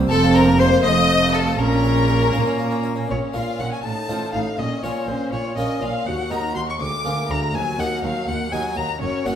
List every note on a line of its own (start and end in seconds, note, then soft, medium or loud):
0.00 0.10 C2 medium
0.00 0.11 C2 medium
0.00 0.11 C4 medium
0.10 0.84 F1 loud
0.10 0.83 F2 loud
0.10 0.81 F2 medium
0.10 0.47 C4 medium
0.10 0.33 A4 medium
0.10 0.36 A4 loud
0.10 0.34 A5 loud
0.24 0.36 F4 medium
0.35 0.60 A#4 loud
0.35 0.43 A#4 medium
0.35 0.49 C5 medium
0.35 0.60 A#5 loud
0.48 0.85 A#3 medium
0.48 0.61 F4 medium
0.59 0.83 C5 loud
0.59 0.84 C5 loud
0.59 0.74 F5 medium
0.59 0.68 C6 loud
0.73 0.85 F4 medium
0.84 1.58 F1 medium
0.84 1.58 F2 medium
0.84 1.56 F2 medium
0.84 1.60 A3 medium
0.84 1.35 D#5 loud
0.84 1.34 D#6 loud
0.97 1.10 F4 medium
1.10 1.23 C5 medium
1.22 1.35 F4 medium
1.34 1.60 A4 medium
1.34 1.48 F5 medium
1.34 1.60 A5 loud
1.47 1.60 F4 medium
1.59 2.34 A#1 medium
1.59 2.31 A#2 medium
1.59 2.33 A#2 medium
1.59 2.87 C#4 medium
1.59 2.85 A#4 medium
1.59 2.86 A#4 medium
1.59 2.83 A#5 loud
1.72 1.85 C#4 medium
1.84 1.98 A#4 medium
1.97 2.10 C#4 medium
2.08 2.22 C#5 medium
2.21 2.35 C#4 medium
2.33 3.10 A#2 medium
2.33 3.05 A#3 medium
2.33 3.10 A#3 medium
2.33 2.47 A#4 medium
2.46 2.60 C#4 medium
2.58 2.72 F4 medium
2.71 2.85 C#4 medium
2.83 2.97 C#5 medium
2.96 3.09 C#4 medium
3.08 3.18 A#1 medium
3.08 3.31 A#2 soft
3.08 3.17 A#2 medium
3.08 3.33 C#4 soft
3.08 3.33 C#5 medium
3.08 3.18 C#5 soft
3.08 3.19 C#5 medium
3.33 3.42 A#1 soft
3.33 3.57 A#2 soft
3.33 3.44 A#2 soft
3.33 3.70 C#4 soft
3.33 3.70 F4 soft
3.33 3.60 F4 soft
3.33 3.70 A#4 soft
3.33 3.60 F5 medium
3.33 3.61 F5 medium
3.33 3.60 F5 medium
3.58 3.68 A#1 soft
3.58 3.81 A#2 soft
3.58 3.69 A#2 soft
3.58 3.85 C#4 soft
3.58 3.72 F#5 medium
3.58 3.73 F#5 medium
3.72 3.83 G#5 medium
3.72 3.85 G#5 medium
3.84 3.92 A1 soft
3.84 4.07 A2 soft
3.84 3.92 A2 soft
3.84 4.08 D#4 soft
3.84 4.32 A5 medium
3.84 4.34 A5 medium
3.84 4.35 A5 medium
4.09 4.17 A1 soft
4.09 4.31 A2 soft
4.09 4.17 A2 soft
4.09 4.45 D#4 soft
4.09 4.45 F4 soft
4.09 4.34 F4 soft
4.09 4.45 C5 soft
4.33 4.42 A1 soft
4.33 4.41 A2 soft
4.33 4.56 A2 soft
4.33 4.59 D#4 soft
4.33 4.60 F5 medium
4.33 4.59 F5 medium
4.58 4.67 A#1 medium
4.58 4.81 A#2 soft
4.58 4.66 A#2 medium
4.58 4.82 C#4 soft
4.58 4.84 D#5 medium
4.58 4.83 D#5 medium
4.58 4.68 D#5 medium
4.83 4.91 A#1 soft
4.83 5.06 A#2 soft
4.83 4.92 A#2 soft
4.83 5.37 C#4 soft
4.83 5.08 F4 soft
4.83 5.37 F4 soft
4.83 5.37 A#4 soft
4.83 5.09 C#5 medium
4.83 5.08 C#5 medium
4.83 5.09 C#5 soft
5.07 5.16 A#1 medium
5.07 5.15 A#2 medium
5.07 5.30 A#2 soft
5.07 5.33 C#4 soft
5.07 5.32 C5 medium
5.07 5.33 C5 medium
5.32 5.41 A#1 soft
5.32 5.40 A#2 medium
5.32 5.55 A#2 soft
5.32 5.58 F4 soft
5.32 5.56 C#5 medium
5.32 5.57 C#5 medium
5.32 5.58 C#5 medium
5.56 5.66 A#1 soft
5.56 5.64 A#2 soft
5.56 5.80 A#2 soft
5.56 5.93 C#4 soft
5.56 5.81 C#4 soft
5.56 5.93 F4 soft
5.56 5.94 A#4 soft
5.56 5.82 D#5 medium
5.56 5.84 D#5 medium
5.56 5.82 D#5 medium
5.81 5.91 A#1 medium
5.81 5.89 A#2 soft
5.81 6.04 A#2 soft
5.81 6.07 F4 soft
5.81 6.07 F5 medium
5.81 6.06 F5 medium
5.81 6.07 F5 medium
6.05 6.28 D#2 soft
6.05 6.14 D#2 medium
6.05 6.16 D#2 medium
6.05 6.30 F#4 soft
6.05 6.33 F#5 medium
6.05 6.14 F#5 medium
6.05 6.31 F#5 medium
6.30 6.53 D#2 soft
6.30 6.39 D#2 medium
6.30 6.40 D#2 medium
6.30 6.66 D#4 soft
6.30 6.56 D#4 soft
6.30 6.67 F#4 soft
6.30 6.67 A#4 soft
6.30 6.55 A#5 medium
6.30 6.56 A#5 medium
6.55 6.78 D#2 soft
6.55 6.64 D#2 soft
6.55 6.65 D#2 medium
6.55 6.80 F#4 soft
6.55 6.60 C6 medium
6.55 6.68 C6 medium
6.68 6.80 C#6 medium
6.68 6.81 C#6 medium
6.68 6.74 C#6 medium
6.80 7.02 D2 soft
6.80 6.88 D2 medium
6.80 6.89 D2 medium
6.80 7.04 G#3 soft
6.80 7.29 D6 medium
6.80 7.30 D6 medium
6.80 7.32 D6 medium
7.04 7.12 D2 soft
7.04 7.27 D2 soft
7.04 7.14 D2 soft
7.04 7.30 A#3 soft
7.04 7.40 F4 soft
7.04 7.40 G#4 soft
7.04 7.41 A#4 soft
7.29 7.37 D2 medium
7.29 7.52 D2 soft
7.29 7.38 D2 medium
7.29 7.55 G#3 soft
7.29 7.53 A#5 medium
7.29 7.38 A#5 medium
7.29 7.56 A#5 medium
7.54 7.62 D#2 medium
7.54 7.76 D#2 soft
7.54 7.77 F#3 medium
7.54 7.78 G#5 medium
7.54 7.81 G#5 medium
7.78 7.86 D#2 medium
7.78 8.01 D#2 soft
7.78 8.03 A#3 soft
7.78 8.32 D#4 soft
7.78 8.32 F#4 soft
7.78 8.32 A#4 soft
7.78 8.02 F#5 medium
7.78 8.03 F#5 medium
8.02 8.10 D#2 medium
8.02 8.25 D#2 soft
8.02 8.28 F#3 soft
8.02 8.27 F5 medium
8.02 8.29 F5 medium
8.02 8.28 F5 medium
8.26 8.36 D#2 medium
8.26 8.50 D#2 soft
8.26 8.52 A#3 medium
8.26 8.51 F#5 medium
8.26 8.54 F#5 medium
8.26 8.36 F#5 medium
8.51 8.60 D#2 medium
8.51 8.60 D#2 soft
8.51 8.74 D#2 soft
8.51 8.75 F#3 soft
8.51 8.88 D#4 soft
8.51 8.88 F#4 soft
8.51 8.88 A#4 soft
8.51 8.75 G#5 medium
8.51 8.78 G#5 medium
8.51 8.60 G#5 medium
8.76 8.84 D#2 medium
8.76 8.85 D#2 medium
8.76 8.99 D#2 soft
8.76 9.01 A#3 soft
8.76 9.01 A#5 medium
8.76 9.00 A#5 medium
8.76 9.01 A#5 medium
9.00 9.09 F#1 medium
9.00 9.09 F#2 medium
9.00 9.24 F#2 soft
9.00 9.24 C#4 medium
9.00 9.24 C#5 medium
9.00 9.27 C#5 medium
9.00 9.25 C#5 medium
9.25 9.34 F#1 medium
9.25 9.35 F#2 soft
9.25 9.34 F#2 medium
9.25 9.35 A#3 soft
9.25 9.35 C#4 soft
9.25 9.35 F#4 soft
9.25 9.35 A#4 soft
9.25 9.35 F#5 medium
9.25 9.33 F#5 medium
9.25 9.35 F#5 medium